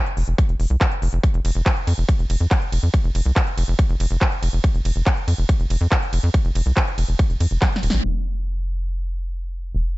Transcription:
0.06 closed hi-hat
0.17 F1, open hi-hat
0.28 F1, closed hi-hat
0.38 kick, closed hi-hat
0.49 F1, closed hi-hat
0.60 F1, open hi-hat
0.70 C2, closed hi-hat
0.81 kick, clap, closed hi-hat
0.92 closed hi-hat
1.02 F1, open hi-hat
1.13 F1, closed hi-hat
1.23 kick, closed hi-hat
1.34 F1, closed hi-hat
1.45 F1, open hi-hat, ride
1.55 F1, closed hi-hat
1.66 kick, clap, closed hi-hat
1.77 closed hi-hat
1.87 F2, open hi-hat, ride
1.98 F1, closed hi-hat
2.09 kick, closed hi-hat
2.19 F1, closed hi-hat
2.30 F1, open hi-hat, ride
2.41 F2, closed hi-hat
2.51 kick, clap, closed hi-hat
2.62 closed hi-hat
2.72 F1, open hi-hat, ride
2.83 F2, closed hi-hat
2.94 kick, closed hi-hat
3.04 F1, closed hi-hat
3.15 F1, open hi-hat, ride
3.26 C2, closed hi-hat
3.36 kick, clap, closed hi-hat
3.47 closed hi-hat
3.58 F1, open hi-hat, ride
3.68 F1, closed hi-hat
3.79 kick, closed hi-hat
3.89 F1, closed hi-hat
4.00 F1, open hi-hat, ride
4.11 F1, closed hi-hat
4.21 kick, clap, closed hi-hat
4.32 closed hi-hat
4.43 F1, open hi-hat, ride
4.53 F1, closed hi-hat
4.64 kick, closed hi-hat
4.75 F1, closed hi-hat
4.85 F1, open hi-hat, ride
4.96 F1, closed hi-hat
5.06 kick, clap, closed hi-hat
5.17 closed hi-hat
5.28 F2, open hi-hat, ride
5.38 F1, closed hi-hat
5.49 kick, closed hi-hat
5.60 F1, closed hi-hat
5.70 F1, open hi-hat, ride
5.81 F2, closed hi-hat
5.92 kick, clap, closed hi-hat
6.02 closed hi-hat
6.13 F1, open hi-hat, ride
6.24 F2, closed hi-hat
6.34 kick, closed hi-hat
6.45 F1, closed hi-hat
6.55 F1, open hi-hat, ride
6.66 C2, closed hi-hat
6.77 kick, clap, closed hi-hat
6.87 closed hi-hat
6.98 F1, open hi-hat, ride
7.09 F1, closed hi-hat
7.19 kick, closed hi-hat
7.30 F1, closed hi-hat
7.40 F2, open hi-hat, ride
7.51 F1, closed hi-hat
7.62 kick, snare, clap, closed hi-hat
7.72 snare, closed hi-hat
7.83 D#1, open hi-hat, ride
7.90 A1, snare, closed hi-hat
8.04 F1
9.75 F1

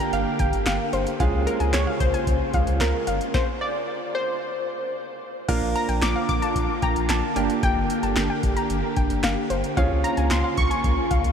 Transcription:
Already playing: D3 A#3 D4 G4 A#4 G5
0.00 A#5, closed hi-hat
0.13 G1 F5, closed hi-hat
0.39 G1 G5, kick, closed hi-hat
0.53 G1, closed hi-hat
0.66 G1 F5, snare, clap, closed hi-hat
0.93 G1 C5, closed hi-hat
1.07 closed hi-hat
1.20 C#2 C#3 G#3 C#4 F4 G#4 F5, kick, closed hi-hat
1.33 C#2
1.47 A#4, closed hi-hat
1.60 C#2 G#5, closed hi-hat
1.74 C#2 C#5, snare, clap, closed hi-hat
1.87 F5
2.00 C#2 C5, kick, closed hi-hat
2.14 G#5, closed hi-hat
2.27 C#2, kick, closed hi-hat
2.54 C#2 G#3 C#4 F4 G#4 F5, kick, closed hi-hat
2.67 C#2, closed hi-hat
2.80 C#2 A#4, snare, clap, closed hi-hat
3.07 G1 F5, closed hi-hat
3.21 closed hi-hat
3.34 C5, kick, snare
3.61 D5
4.15 C5
5.48 A#1 D3 A#3 D4 F4 A#4 F5, kick, closed hi-hat, crash
5.62 A#1
5.76 A#5, closed hi-hat
5.89 A#1 G5, closed hi-hat
6.02 A#1 D6, snare, clap, closed hi-hat
6.16 F5
6.29 A#1 D6, kick, closed hi-hat
6.42 A5, closed hi-hat
6.56 A#1, kick, closed hi-hat
6.82 A#1 G5 A#5, kick, closed hi-hat
6.96 A#1, closed hi-hat
7.09 A#1 A5, snare, clap, closed hi-hat
7.36 G1 D3 A#3 D4 G4 A#4 G5, closed hi-hat
7.50 closed hi-hat
7.63 G1 G5, kick, closed hi-hat
7.76 G1
7.90 closed hi-hat
8.03 G1 A5, closed hi-hat
8.16 G1, snare, clap, closed hi-hat
8.30 G5
8.43 G1, kick, closed hi-hat
8.57 A#5, closed hi-hat
8.70 G1, closed hi-hat
8.96 G1 G5, kick, closed hi-hat
9.10 G1, closed hi-hat
9.23 G1 F5, snare, clap, closed hi-hat
9.50 G1 C5, closed hi-hat
9.64 closed hi-hat
9.77 C#2 C#3 A#3 C#4 F4 G#4 C#5 F5, kick, closed hi-hat
9.91 C#2
10.04 A#5, closed hi-hat
10.17 C#2 G#5, closed hi-hat
10.31 C#2 C6, snare, clap, closed hi-hat
10.44 F5
10.57 C#2 C#6, kick, closed hi-hat
10.71 G#5, closed hi-hat
10.84 C#2, kick, closed hi-hat
11.11 C#2 F5, kick, closed hi-hat
11.24 C#2, closed hi-hat

